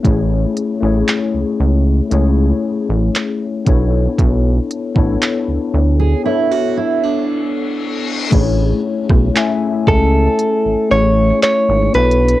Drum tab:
CC |------------------------------------------------|------------------------------------------------|x-----------------------------------------------|
HH |x-----x-----x-----------x-----------x-----x-----|x-----x-----x-----------------------------------|x-----------x-----------x-----------x-----x-x-x-|
CP |------------x-----------------------x-----------|------------x-----------------------------------|------------x-----------------------x-----------|
SD |------------------------------------------------|------------------------------------------------|---------r--------------------------------------|
BD |o-----------------------------------------o-----|o--------o--------------------------------------|o--------o--------o-----------------------------|